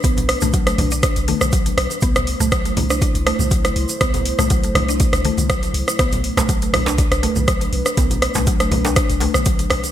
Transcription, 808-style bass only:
X:1
M:4/4
L:1/16
Q:"Swing 16ths" 1/4=121
K:Bphr
V:1 name="808-style bass" clef=bass
B,,,3 B,,,3 B,,,3 B,,, z B,,,3 B,,, z | C,,3 C,,3 C,,3 C,, z C,,3 C,, z | C,,3 C,,3 C,,3 C,, z C,,3 C,, z | B,,,3 B,,,3 B,,,3 B,,, z B,,,3 B,,, z |
B,,,3 B,,,3 B,,,3 B,,, z B,,,3 B,,, z |]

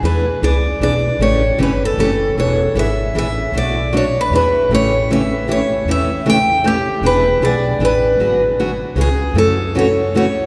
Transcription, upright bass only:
X:1
M:3/4
L:1/8
Q:"Swing" 1/4=154
K:Emix
V:1 name="Upright bass" clef=bass
E,,2 C,,2 B,,,2 | A,,,2 =G,,,2 F,,,2 | E,,,2 G,,,2 A,,,2 | B,,,4 E,,2 |
A,,,6 | E,,6 | E,,,2 B,,,2 A,,,2 | G,,,4 C,,2 |
F,,6 |]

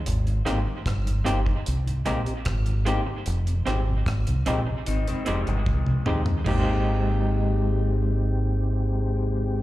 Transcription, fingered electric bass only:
X:1
M:4/4
L:1/16
Q:1/4=75
K:Ab
V:1 name="Fingered electric bass" clef=bass
A,,,2 A,,, z G,,,2 G,,, z C,,2 B,,, z A,,,3 z | F,,,2 A,,,2 A,,, C,, B,,, z A,,, z F,,, G,,, C,,2 E,,2 | A,,,16 |]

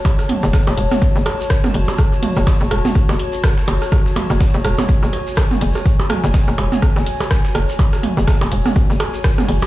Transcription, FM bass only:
X:1
M:4/4
L:1/16
Q:"Swing 16ths" 1/4=124
K:F#m
V:1 name="FM bass" clef=bass
z3 F,,, z F,,, E,,, z2 F,,, z4 F,,, z | z3 F,,, z F,,, E,,, z2 F,,, z4 F,,, z | z3 F,,, z F,,, E,,, z2 F,,, z4 F,,, z | z3 F,,, z F,,, E,,, z2 F,,, z4 F,,, z |
z3 F,,, z F,,, E,,, z2 F,,, z4 F,,, z |]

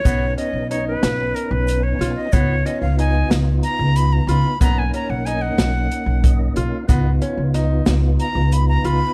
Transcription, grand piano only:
X:1
M:7/8
L:1/8
Q:1/4=92
K:Dbmix
V:1 name="Grand piano"
C D E2 z2 F | C D E2 z2 F | C D E2 z2 F | C D E2 z2 F |]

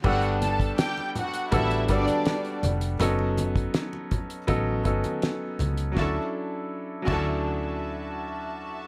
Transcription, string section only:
X:1
M:4/4
L:1/8
Q:1/4=81
K:D
V:1 name="String section"
[Ff] [Aa] [Gg] [Ff] [Ee] [Dd]2 z | z8 | [Fea] z2 [Fea]4- [Fea] |]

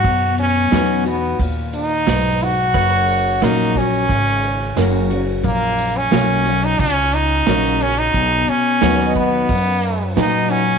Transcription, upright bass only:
X:1
M:4/4
L:1/8
Q:1/4=89
K:B
V:1 name="Upright bass" clef=bass
F,,2 E,,2 D,,2 B,,,2 | F,,,2 A,,,2 G,,,2 F,,,2 | A,,,2 B,,,2 C,,2 A,,,2 | B,,, z D,,2 F,,2 A,,2 |]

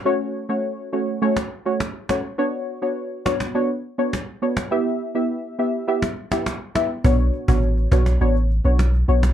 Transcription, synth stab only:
X:1
M:4/4
L:1/16
Q:1/4=103
K:Bm
V:1 name="Synth stab"
[A,CFc]3 [A,CFc]3 [A,CFc]2 [A,CFc] z2 [A,CFc] z2 [A,CFc] z | [B,DFc]3 [B,DFc]3 [B,DFc]2 [B,DFc] z2 [B,DFc] z2 [B,DFc] z | [B,EGe]3 [B,EGe]3 [B,EGe]2 [B,EGe] z2 [B,EGe] z2 [B,EGe] z | [B,DFc]3 [B,DFc]3 [B,DFc]2 [B,DFc] z2 [B,DFc] z2 [B,DFc] z |]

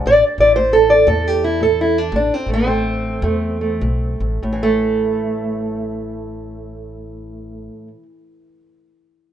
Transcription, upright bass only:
X:1
M:4/4
L:1/16
Q:"Swing" 1/4=97
K:Am
V:1 name="Upright bass" clef=bass
A,,, z A,,,6 E,,8 | A,,, z A,,,6 E,,4 B,,,2 A,,,2 | A,,,16- | A,,,16 |]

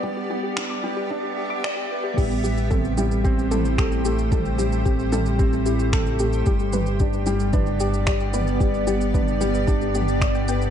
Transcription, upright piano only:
X:1
M:4/4
L:1/8
Q:1/4=112
K:Am
V:1 name="Upright piano"
G, G, D G, D G d B, | G, G, C G, C E A A, | G, G, C G, C E A A, | G, G, D G, D G d B, |
G, G, D G, D G d B, |]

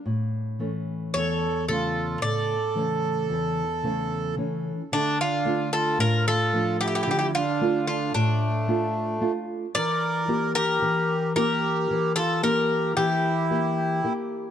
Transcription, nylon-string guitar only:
X:1
M:9/8
L:1/8
Q:3/8=37
K:Dm
V:1 name="Nylon-string guitar"
A,, [E,A,^C] E,, [^C,A,] A,, [C,E,A,] E,, [C,E,A,] [E,A,C] | D, [A,DF] A,, [F,A,D] D, [A,DF] A,, [A,DF] [A,DF] | E, [B,EG] E, [B,EG] E, [B,EG] E, [B,EG] [B,EG] |]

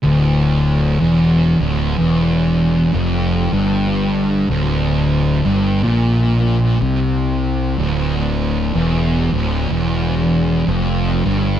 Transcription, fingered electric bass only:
X:1
M:4/4
L:1/8
Q:"Swing" 1/4=62
K:Dm
V:1 name="Fingered electric bass" clef=bass
D,,,2 E,,, D,,, E,,,2 F,,, G,,,- | G,,, D,,,2 G,,, B,,,2 C,,2 | D,,,2 E,,, D,,, E,,,2 F,,, G,,, |]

